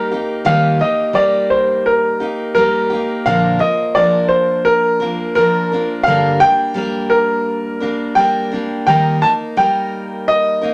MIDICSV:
0, 0, Header, 1, 3, 480
1, 0, Start_track
1, 0, Tempo, 700935
1, 313, Time_signature, 4, 2, 24, 8
1, 7354, End_track
2, 0, Start_track
2, 0, Title_t, "Grand piano"
2, 0, Program_c, 0, 0
2, 0, Note_on_c, 0, 70, 76
2, 315, Note_on_c, 0, 77, 89
2, 329, Note_off_c, 0, 70, 0
2, 554, Note_on_c, 0, 75, 79
2, 561, Note_off_c, 0, 77, 0
2, 788, Note_on_c, 0, 74, 76
2, 800, Note_off_c, 0, 75, 0
2, 1029, Note_on_c, 0, 72, 75
2, 1037, Note_off_c, 0, 74, 0
2, 1273, Note_on_c, 0, 70, 80
2, 1277, Note_off_c, 0, 72, 0
2, 1734, Note_off_c, 0, 70, 0
2, 1744, Note_on_c, 0, 70, 86
2, 2230, Note_on_c, 0, 77, 86
2, 2241, Note_off_c, 0, 70, 0
2, 2453, Note_off_c, 0, 77, 0
2, 2467, Note_on_c, 0, 75, 81
2, 2704, Note_on_c, 0, 74, 85
2, 2715, Note_off_c, 0, 75, 0
2, 2930, Note_off_c, 0, 74, 0
2, 2935, Note_on_c, 0, 72, 78
2, 3165, Note_off_c, 0, 72, 0
2, 3183, Note_on_c, 0, 70, 91
2, 3639, Note_off_c, 0, 70, 0
2, 3667, Note_on_c, 0, 70, 84
2, 4133, Note_on_c, 0, 77, 91
2, 4162, Note_off_c, 0, 70, 0
2, 4384, Note_on_c, 0, 79, 110
2, 4388, Note_off_c, 0, 77, 0
2, 4860, Note_on_c, 0, 70, 81
2, 4881, Note_off_c, 0, 79, 0
2, 5583, Note_on_c, 0, 79, 94
2, 5607, Note_off_c, 0, 70, 0
2, 6040, Note_off_c, 0, 79, 0
2, 6071, Note_on_c, 0, 79, 87
2, 6314, Note_on_c, 0, 81, 88
2, 6319, Note_off_c, 0, 79, 0
2, 6367, Note_off_c, 0, 81, 0
2, 6556, Note_on_c, 0, 79, 90
2, 7039, Note_on_c, 0, 75, 95
2, 7049, Note_off_c, 0, 79, 0
2, 7354, Note_off_c, 0, 75, 0
2, 7354, End_track
3, 0, Start_track
3, 0, Title_t, "Steel-string acoustic guitar"
3, 0, Program_c, 1, 25
3, 0, Note_on_c, 1, 55, 58
3, 0, Note_on_c, 1, 58, 52
3, 0, Note_on_c, 1, 63, 53
3, 0, Note_on_c, 1, 67, 56
3, 70, Note_off_c, 1, 67, 0
3, 72, Note_off_c, 1, 55, 0
3, 77, Note_off_c, 1, 58, 0
3, 78, Note_off_c, 1, 63, 0
3, 79, Note_on_c, 1, 67, 52
3, 86, Note_on_c, 1, 63, 43
3, 95, Note_on_c, 1, 58, 42
3, 302, Note_off_c, 1, 58, 0
3, 304, Note_off_c, 1, 63, 0
3, 306, Note_on_c, 1, 51, 73
3, 309, Note_on_c, 1, 55, 67
3, 310, Note_on_c, 1, 58, 76
3, 312, Note_on_c, 1, 63, 75
3, 313, Note_off_c, 1, 67, 0
3, 321, Note_on_c, 1, 67, 69
3, 535, Note_off_c, 1, 67, 0
3, 543, Note_on_c, 1, 67, 44
3, 544, Note_off_c, 1, 63, 0
3, 549, Note_off_c, 1, 51, 0
3, 551, Note_off_c, 1, 55, 0
3, 551, Note_off_c, 1, 58, 0
3, 553, Note_on_c, 1, 63, 40
3, 561, Note_on_c, 1, 58, 36
3, 776, Note_on_c, 1, 55, 56
3, 781, Note_off_c, 1, 58, 0
3, 785, Note_off_c, 1, 63, 0
3, 787, Note_off_c, 1, 67, 0
3, 789, Note_on_c, 1, 58, 61
3, 793, Note_on_c, 1, 63, 60
3, 797, Note_on_c, 1, 67, 59
3, 1499, Note_off_c, 1, 67, 0
3, 1503, Note_off_c, 1, 55, 0
3, 1506, Note_off_c, 1, 63, 0
3, 1507, Note_on_c, 1, 67, 50
3, 1514, Note_on_c, 1, 63, 40
3, 1523, Note_off_c, 1, 58, 0
3, 1525, Note_on_c, 1, 58, 45
3, 1745, Note_off_c, 1, 58, 0
3, 1749, Note_off_c, 1, 67, 0
3, 1750, Note_on_c, 1, 55, 58
3, 1752, Note_off_c, 1, 63, 0
3, 1753, Note_on_c, 1, 58, 56
3, 1760, Note_on_c, 1, 63, 58
3, 1766, Note_on_c, 1, 67, 63
3, 1977, Note_off_c, 1, 67, 0
3, 1985, Note_on_c, 1, 67, 53
3, 1990, Note_off_c, 1, 55, 0
3, 1990, Note_off_c, 1, 63, 0
3, 1991, Note_off_c, 1, 58, 0
3, 1998, Note_on_c, 1, 63, 46
3, 2006, Note_on_c, 1, 58, 42
3, 2227, Note_off_c, 1, 67, 0
3, 2231, Note_off_c, 1, 58, 0
3, 2231, Note_on_c, 1, 46, 68
3, 2234, Note_off_c, 1, 63, 0
3, 2234, Note_on_c, 1, 50, 63
3, 2234, Note_on_c, 1, 53, 77
3, 2239, Note_on_c, 1, 58, 75
3, 2240, Note_on_c, 1, 62, 73
3, 2245, Note_on_c, 1, 70, 71
3, 2451, Note_off_c, 1, 70, 0
3, 2459, Note_on_c, 1, 70, 52
3, 2465, Note_off_c, 1, 58, 0
3, 2470, Note_off_c, 1, 46, 0
3, 2470, Note_off_c, 1, 53, 0
3, 2472, Note_off_c, 1, 50, 0
3, 2473, Note_on_c, 1, 58, 42
3, 2475, Note_off_c, 1, 62, 0
3, 2478, Note_on_c, 1, 53, 41
3, 2696, Note_off_c, 1, 53, 0
3, 2704, Note_off_c, 1, 70, 0
3, 2704, Note_on_c, 1, 53, 51
3, 2706, Note_off_c, 1, 58, 0
3, 2714, Note_on_c, 1, 58, 59
3, 2720, Note_on_c, 1, 70, 62
3, 2721, Note_on_c, 1, 62, 55
3, 3421, Note_off_c, 1, 70, 0
3, 3424, Note_on_c, 1, 70, 52
3, 3427, Note_off_c, 1, 53, 0
3, 3427, Note_off_c, 1, 62, 0
3, 3435, Note_off_c, 1, 58, 0
3, 3435, Note_on_c, 1, 62, 47
3, 3438, Note_on_c, 1, 58, 45
3, 3445, Note_on_c, 1, 53, 40
3, 3656, Note_off_c, 1, 53, 0
3, 3664, Note_off_c, 1, 58, 0
3, 3665, Note_on_c, 1, 53, 53
3, 3666, Note_off_c, 1, 70, 0
3, 3670, Note_off_c, 1, 62, 0
3, 3672, Note_on_c, 1, 58, 53
3, 3678, Note_on_c, 1, 62, 56
3, 3687, Note_on_c, 1, 70, 61
3, 3907, Note_off_c, 1, 53, 0
3, 3909, Note_off_c, 1, 70, 0
3, 3911, Note_off_c, 1, 58, 0
3, 3914, Note_off_c, 1, 62, 0
3, 3917, Note_on_c, 1, 70, 49
3, 3925, Note_on_c, 1, 62, 44
3, 3933, Note_on_c, 1, 53, 41
3, 3933, Note_on_c, 1, 58, 44
3, 4153, Note_off_c, 1, 62, 0
3, 4153, Note_off_c, 1, 70, 0
3, 4154, Note_off_c, 1, 58, 0
3, 4154, Note_on_c, 1, 43, 67
3, 4156, Note_on_c, 1, 50, 65
3, 4159, Note_off_c, 1, 53, 0
3, 4162, Note_on_c, 1, 55, 69
3, 4162, Note_on_c, 1, 62, 70
3, 4163, Note_on_c, 1, 58, 74
3, 4167, Note_on_c, 1, 70, 81
3, 4379, Note_off_c, 1, 70, 0
3, 4382, Note_off_c, 1, 62, 0
3, 4387, Note_on_c, 1, 70, 50
3, 4389, Note_off_c, 1, 58, 0
3, 4390, Note_on_c, 1, 62, 44
3, 4392, Note_off_c, 1, 43, 0
3, 4393, Note_off_c, 1, 50, 0
3, 4395, Note_off_c, 1, 55, 0
3, 4397, Note_on_c, 1, 58, 39
3, 4402, Note_on_c, 1, 55, 40
3, 4609, Note_off_c, 1, 55, 0
3, 4616, Note_off_c, 1, 58, 0
3, 4617, Note_on_c, 1, 55, 58
3, 4619, Note_off_c, 1, 62, 0
3, 4624, Note_on_c, 1, 58, 55
3, 4627, Note_on_c, 1, 62, 64
3, 4628, Note_off_c, 1, 70, 0
3, 4637, Note_on_c, 1, 70, 67
3, 5341, Note_off_c, 1, 70, 0
3, 5343, Note_off_c, 1, 62, 0
3, 5344, Note_on_c, 1, 70, 46
3, 5351, Note_on_c, 1, 62, 45
3, 5356, Note_off_c, 1, 58, 0
3, 5359, Note_on_c, 1, 58, 45
3, 5362, Note_off_c, 1, 55, 0
3, 5365, Note_on_c, 1, 55, 43
3, 5580, Note_off_c, 1, 55, 0
3, 5586, Note_off_c, 1, 58, 0
3, 5587, Note_off_c, 1, 70, 0
3, 5588, Note_on_c, 1, 55, 57
3, 5591, Note_off_c, 1, 62, 0
3, 5595, Note_on_c, 1, 58, 57
3, 5601, Note_on_c, 1, 62, 52
3, 5609, Note_on_c, 1, 70, 63
3, 5823, Note_off_c, 1, 70, 0
3, 5829, Note_off_c, 1, 55, 0
3, 5831, Note_off_c, 1, 62, 0
3, 5832, Note_on_c, 1, 70, 51
3, 5833, Note_off_c, 1, 58, 0
3, 5839, Note_on_c, 1, 62, 46
3, 5845, Note_on_c, 1, 58, 43
3, 5856, Note_on_c, 1, 55, 38
3, 6069, Note_off_c, 1, 55, 0
3, 6071, Note_off_c, 1, 70, 0
3, 6072, Note_on_c, 1, 51, 64
3, 6074, Note_off_c, 1, 58, 0
3, 6075, Note_off_c, 1, 62, 0
3, 6078, Note_on_c, 1, 55, 65
3, 6082, Note_on_c, 1, 58, 75
3, 6087, Note_on_c, 1, 63, 72
3, 6087, Note_on_c, 1, 70, 70
3, 6301, Note_off_c, 1, 70, 0
3, 6309, Note_on_c, 1, 70, 43
3, 6312, Note_off_c, 1, 51, 0
3, 6312, Note_off_c, 1, 63, 0
3, 6315, Note_off_c, 1, 55, 0
3, 6317, Note_off_c, 1, 58, 0
3, 6320, Note_on_c, 1, 63, 41
3, 6333, Note_on_c, 1, 58, 39
3, 6550, Note_off_c, 1, 70, 0
3, 6551, Note_on_c, 1, 55, 57
3, 6552, Note_off_c, 1, 58, 0
3, 6556, Note_off_c, 1, 63, 0
3, 6560, Note_on_c, 1, 58, 55
3, 6566, Note_on_c, 1, 63, 60
3, 6572, Note_on_c, 1, 70, 63
3, 7266, Note_off_c, 1, 70, 0
3, 7269, Note_on_c, 1, 70, 49
3, 7270, Note_off_c, 1, 63, 0
3, 7273, Note_off_c, 1, 55, 0
3, 7278, Note_on_c, 1, 63, 48
3, 7284, Note_off_c, 1, 58, 0
3, 7287, Note_on_c, 1, 58, 42
3, 7354, Note_off_c, 1, 58, 0
3, 7354, Note_off_c, 1, 63, 0
3, 7354, Note_off_c, 1, 70, 0
3, 7354, End_track
0, 0, End_of_file